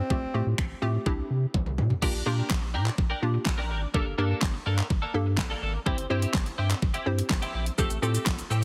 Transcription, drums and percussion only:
0, 0, Header, 1, 2, 480
1, 0, Start_track
1, 0, Tempo, 480000
1, 105, Time_signature, 4, 2, 24, 8
1, 8641, End_track
2, 0, Start_track
2, 0, Title_t, "Drums"
2, 103, Note_on_c, 9, 36, 104
2, 203, Note_off_c, 9, 36, 0
2, 582, Note_on_c, 9, 26, 103
2, 584, Note_on_c, 9, 36, 106
2, 682, Note_off_c, 9, 26, 0
2, 684, Note_off_c, 9, 36, 0
2, 1062, Note_on_c, 9, 36, 100
2, 1162, Note_off_c, 9, 36, 0
2, 1543, Note_on_c, 9, 36, 94
2, 1543, Note_on_c, 9, 48, 56
2, 1643, Note_off_c, 9, 36, 0
2, 1643, Note_off_c, 9, 48, 0
2, 1663, Note_on_c, 9, 47, 59
2, 1763, Note_off_c, 9, 47, 0
2, 1783, Note_on_c, 9, 45, 89
2, 1883, Note_off_c, 9, 45, 0
2, 1903, Note_on_c, 9, 43, 83
2, 2003, Note_off_c, 9, 43, 0
2, 2023, Note_on_c, 9, 36, 103
2, 2024, Note_on_c, 9, 49, 95
2, 2123, Note_off_c, 9, 36, 0
2, 2124, Note_off_c, 9, 49, 0
2, 2495, Note_on_c, 9, 38, 81
2, 2503, Note_on_c, 9, 39, 100
2, 2505, Note_on_c, 9, 36, 112
2, 2595, Note_off_c, 9, 38, 0
2, 2603, Note_off_c, 9, 39, 0
2, 2605, Note_off_c, 9, 36, 0
2, 2863, Note_on_c, 9, 39, 72
2, 2963, Note_off_c, 9, 39, 0
2, 2983, Note_on_c, 9, 36, 108
2, 3083, Note_off_c, 9, 36, 0
2, 3453, Note_on_c, 9, 38, 94
2, 3462, Note_on_c, 9, 39, 120
2, 3463, Note_on_c, 9, 36, 94
2, 3553, Note_off_c, 9, 38, 0
2, 3562, Note_off_c, 9, 39, 0
2, 3563, Note_off_c, 9, 36, 0
2, 3943, Note_on_c, 9, 36, 103
2, 4043, Note_off_c, 9, 36, 0
2, 4414, Note_on_c, 9, 38, 81
2, 4423, Note_on_c, 9, 39, 107
2, 4426, Note_on_c, 9, 36, 108
2, 4514, Note_off_c, 9, 38, 0
2, 4523, Note_off_c, 9, 39, 0
2, 4526, Note_off_c, 9, 36, 0
2, 4784, Note_on_c, 9, 39, 69
2, 4884, Note_off_c, 9, 39, 0
2, 4903, Note_on_c, 9, 36, 106
2, 5003, Note_off_c, 9, 36, 0
2, 5373, Note_on_c, 9, 38, 99
2, 5381, Note_on_c, 9, 39, 122
2, 5384, Note_on_c, 9, 36, 102
2, 5473, Note_off_c, 9, 38, 0
2, 5481, Note_off_c, 9, 39, 0
2, 5484, Note_off_c, 9, 36, 0
2, 5864, Note_on_c, 9, 36, 110
2, 5964, Note_off_c, 9, 36, 0
2, 5981, Note_on_c, 9, 42, 57
2, 6081, Note_off_c, 9, 42, 0
2, 6224, Note_on_c, 9, 42, 77
2, 6324, Note_off_c, 9, 42, 0
2, 6335, Note_on_c, 9, 38, 82
2, 6344, Note_on_c, 9, 39, 107
2, 6346, Note_on_c, 9, 36, 115
2, 6435, Note_off_c, 9, 38, 0
2, 6444, Note_off_c, 9, 39, 0
2, 6446, Note_off_c, 9, 36, 0
2, 6462, Note_on_c, 9, 42, 48
2, 6562, Note_off_c, 9, 42, 0
2, 6704, Note_on_c, 9, 39, 68
2, 6705, Note_on_c, 9, 42, 76
2, 6804, Note_off_c, 9, 39, 0
2, 6805, Note_off_c, 9, 42, 0
2, 6824, Note_on_c, 9, 36, 110
2, 6924, Note_off_c, 9, 36, 0
2, 6942, Note_on_c, 9, 42, 56
2, 7042, Note_off_c, 9, 42, 0
2, 7186, Note_on_c, 9, 42, 68
2, 7286, Note_off_c, 9, 42, 0
2, 7295, Note_on_c, 9, 38, 94
2, 7304, Note_on_c, 9, 39, 116
2, 7305, Note_on_c, 9, 36, 102
2, 7395, Note_off_c, 9, 38, 0
2, 7404, Note_off_c, 9, 39, 0
2, 7405, Note_off_c, 9, 36, 0
2, 7425, Note_on_c, 9, 42, 58
2, 7525, Note_off_c, 9, 42, 0
2, 7664, Note_on_c, 9, 42, 64
2, 7764, Note_off_c, 9, 42, 0
2, 7785, Note_on_c, 9, 82, 76
2, 7786, Note_on_c, 9, 36, 106
2, 7885, Note_off_c, 9, 82, 0
2, 7886, Note_off_c, 9, 36, 0
2, 7904, Note_on_c, 9, 42, 58
2, 7904, Note_on_c, 9, 82, 56
2, 8004, Note_off_c, 9, 42, 0
2, 8004, Note_off_c, 9, 82, 0
2, 8031, Note_on_c, 9, 82, 56
2, 8131, Note_off_c, 9, 82, 0
2, 8146, Note_on_c, 9, 42, 75
2, 8146, Note_on_c, 9, 82, 77
2, 8246, Note_off_c, 9, 42, 0
2, 8246, Note_off_c, 9, 82, 0
2, 8257, Note_on_c, 9, 38, 84
2, 8266, Note_on_c, 9, 39, 110
2, 8267, Note_on_c, 9, 36, 113
2, 8267, Note_on_c, 9, 82, 76
2, 8357, Note_off_c, 9, 38, 0
2, 8366, Note_off_c, 9, 39, 0
2, 8367, Note_off_c, 9, 36, 0
2, 8367, Note_off_c, 9, 82, 0
2, 8386, Note_on_c, 9, 42, 53
2, 8386, Note_on_c, 9, 82, 53
2, 8486, Note_off_c, 9, 42, 0
2, 8486, Note_off_c, 9, 82, 0
2, 8508, Note_on_c, 9, 82, 56
2, 8608, Note_off_c, 9, 82, 0
2, 8641, End_track
0, 0, End_of_file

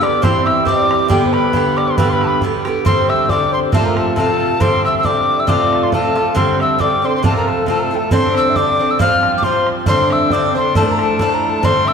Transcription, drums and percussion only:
0, 0, Header, 1, 2, 480
1, 0, Start_track
1, 0, Tempo, 438596
1, 250, Time_signature, 2, 2, 24, 8
1, 13059, End_track
2, 0, Start_track
2, 0, Title_t, "Bodhran"
2, 35, Note_on_c, 9, 64, 71
2, 144, Note_off_c, 9, 64, 0
2, 257, Note_on_c, 9, 64, 87
2, 366, Note_off_c, 9, 64, 0
2, 514, Note_on_c, 9, 64, 65
2, 624, Note_off_c, 9, 64, 0
2, 728, Note_on_c, 9, 64, 91
2, 837, Note_off_c, 9, 64, 0
2, 994, Note_on_c, 9, 64, 75
2, 1103, Note_off_c, 9, 64, 0
2, 1205, Note_on_c, 9, 64, 81
2, 1314, Note_off_c, 9, 64, 0
2, 1463, Note_on_c, 9, 64, 57
2, 1573, Note_off_c, 9, 64, 0
2, 1679, Note_on_c, 9, 64, 84
2, 1788, Note_off_c, 9, 64, 0
2, 1946, Note_on_c, 9, 64, 64
2, 2056, Note_off_c, 9, 64, 0
2, 2164, Note_on_c, 9, 64, 79
2, 2274, Note_off_c, 9, 64, 0
2, 2423, Note_on_c, 9, 64, 53
2, 2532, Note_off_c, 9, 64, 0
2, 2638, Note_on_c, 9, 64, 74
2, 2747, Note_off_c, 9, 64, 0
2, 2901, Note_on_c, 9, 64, 61
2, 3010, Note_off_c, 9, 64, 0
2, 3129, Note_on_c, 9, 64, 86
2, 3238, Note_off_c, 9, 64, 0
2, 3391, Note_on_c, 9, 64, 65
2, 3501, Note_off_c, 9, 64, 0
2, 3502, Note_on_c, 9, 64, 27
2, 3604, Note_off_c, 9, 64, 0
2, 3604, Note_on_c, 9, 64, 91
2, 3713, Note_off_c, 9, 64, 0
2, 4078, Note_on_c, 9, 64, 94
2, 4188, Note_off_c, 9, 64, 0
2, 4342, Note_on_c, 9, 64, 64
2, 4451, Note_off_c, 9, 64, 0
2, 4456, Note_on_c, 9, 64, 28
2, 4564, Note_off_c, 9, 64, 0
2, 4564, Note_on_c, 9, 64, 79
2, 4673, Note_off_c, 9, 64, 0
2, 5043, Note_on_c, 9, 64, 84
2, 5152, Note_off_c, 9, 64, 0
2, 5308, Note_on_c, 9, 64, 57
2, 5413, Note_off_c, 9, 64, 0
2, 5413, Note_on_c, 9, 64, 28
2, 5520, Note_off_c, 9, 64, 0
2, 5520, Note_on_c, 9, 64, 70
2, 5630, Note_off_c, 9, 64, 0
2, 5995, Note_on_c, 9, 64, 69
2, 6104, Note_off_c, 9, 64, 0
2, 6267, Note_on_c, 9, 64, 56
2, 6374, Note_off_c, 9, 64, 0
2, 6374, Note_on_c, 9, 64, 27
2, 6483, Note_off_c, 9, 64, 0
2, 6483, Note_on_c, 9, 64, 75
2, 6593, Note_off_c, 9, 64, 0
2, 6745, Note_on_c, 9, 64, 50
2, 6855, Note_off_c, 9, 64, 0
2, 6965, Note_on_c, 9, 64, 69
2, 7074, Note_off_c, 9, 64, 0
2, 7224, Note_on_c, 9, 64, 56
2, 7333, Note_off_c, 9, 64, 0
2, 7338, Note_on_c, 9, 64, 21
2, 7444, Note_off_c, 9, 64, 0
2, 7444, Note_on_c, 9, 64, 74
2, 7554, Note_off_c, 9, 64, 0
2, 7923, Note_on_c, 9, 64, 88
2, 8032, Note_off_c, 9, 64, 0
2, 8182, Note_on_c, 9, 64, 50
2, 8291, Note_off_c, 9, 64, 0
2, 8295, Note_on_c, 9, 64, 26
2, 8404, Note_off_c, 9, 64, 0
2, 8404, Note_on_c, 9, 64, 70
2, 8513, Note_off_c, 9, 64, 0
2, 8876, Note_on_c, 9, 64, 78
2, 8986, Note_off_c, 9, 64, 0
2, 9134, Note_on_c, 9, 64, 63
2, 9243, Note_off_c, 9, 64, 0
2, 9251, Note_on_c, 9, 64, 25
2, 9360, Note_off_c, 9, 64, 0
2, 9367, Note_on_c, 9, 64, 77
2, 9477, Note_off_c, 9, 64, 0
2, 9846, Note_on_c, 9, 64, 75
2, 9955, Note_off_c, 9, 64, 0
2, 10102, Note_on_c, 9, 64, 56
2, 10212, Note_off_c, 9, 64, 0
2, 10213, Note_on_c, 9, 64, 23
2, 10315, Note_off_c, 9, 64, 0
2, 10315, Note_on_c, 9, 64, 72
2, 10425, Note_off_c, 9, 64, 0
2, 10577, Note_on_c, 9, 64, 59
2, 10687, Note_off_c, 9, 64, 0
2, 10792, Note_on_c, 9, 64, 72
2, 10901, Note_off_c, 9, 64, 0
2, 11056, Note_on_c, 9, 64, 62
2, 11166, Note_off_c, 9, 64, 0
2, 11173, Note_on_c, 9, 64, 25
2, 11275, Note_off_c, 9, 64, 0
2, 11275, Note_on_c, 9, 64, 82
2, 11384, Note_off_c, 9, 64, 0
2, 11768, Note_on_c, 9, 64, 78
2, 11877, Note_off_c, 9, 64, 0
2, 12027, Note_on_c, 9, 64, 60
2, 12137, Note_off_c, 9, 64, 0
2, 12142, Note_on_c, 9, 64, 26
2, 12251, Note_off_c, 9, 64, 0
2, 12252, Note_on_c, 9, 64, 83
2, 12361, Note_off_c, 9, 64, 0
2, 12732, Note_on_c, 9, 64, 75
2, 12841, Note_off_c, 9, 64, 0
2, 12993, Note_on_c, 9, 64, 60
2, 13059, Note_off_c, 9, 64, 0
2, 13059, End_track
0, 0, End_of_file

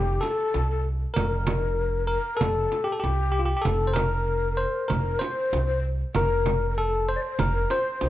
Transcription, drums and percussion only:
0, 0, Header, 1, 2, 480
1, 0, Start_track
1, 0, Tempo, 623053
1, 898, Time_signature, 4, 2, 24, 8
1, 6233, End_track
2, 0, Start_track
2, 0, Title_t, "Frame drum"
2, 175, Note_on_c, 9, 64, 61
2, 252, Note_off_c, 9, 64, 0
2, 418, Note_on_c, 9, 64, 66
2, 495, Note_off_c, 9, 64, 0
2, 896, Note_on_c, 9, 64, 84
2, 973, Note_off_c, 9, 64, 0
2, 1130, Note_on_c, 9, 64, 86
2, 1207, Note_off_c, 9, 64, 0
2, 1856, Note_on_c, 9, 64, 84
2, 1933, Note_off_c, 9, 64, 0
2, 2094, Note_on_c, 9, 64, 60
2, 2171, Note_off_c, 9, 64, 0
2, 2340, Note_on_c, 9, 64, 66
2, 2417, Note_off_c, 9, 64, 0
2, 2813, Note_on_c, 9, 64, 78
2, 2890, Note_off_c, 9, 64, 0
2, 3049, Note_on_c, 9, 64, 81
2, 3126, Note_off_c, 9, 64, 0
2, 3773, Note_on_c, 9, 64, 81
2, 3850, Note_off_c, 9, 64, 0
2, 4016, Note_on_c, 9, 64, 68
2, 4093, Note_off_c, 9, 64, 0
2, 4260, Note_on_c, 9, 64, 73
2, 4337, Note_off_c, 9, 64, 0
2, 4735, Note_on_c, 9, 64, 81
2, 4812, Note_off_c, 9, 64, 0
2, 4975, Note_on_c, 9, 64, 82
2, 5052, Note_off_c, 9, 64, 0
2, 5691, Note_on_c, 9, 64, 87
2, 5768, Note_off_c, 9, 64, 0
2, 5934, Note_on_c, 9, 64, 64
2, 6011, Note_off_c, 9, 64, 0
2, 6172, Note_on_c, 9, 64, 74
2, 6233, Note_off_c, 9, 64, 0
2, 6233, End_track
0, 0, End_of_file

